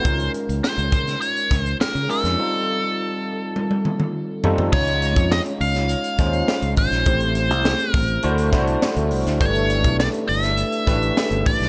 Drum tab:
CC |----------------|----------------|x---------------|----------------|
HH |xxxx-xxxxxxx-xox|----------------|-xxx-xoxxxxx-xox|xxxx-xoxxxxx-xox|
SD |----o--o--o-o--o|----------------|----o--o--o-o--o|----o-----o-o--o|
T1 |----------------|--------oo------|----------------|----------------|
T2 |----------------|----------oo----|----------------|----------------|
FT |----------------|--------------oo|----------------|----------------|
BD |o-----o---o-----|----------------|o--o------o---o-|o-----o---o-----|

CC |----------------|
HH |xxxx-xoxxxxx-xox|
SD |----o--o--o-o--o|
T1 |----------------|
T2 |----------------|
FT |----------------|
BD |o--o------o---o-|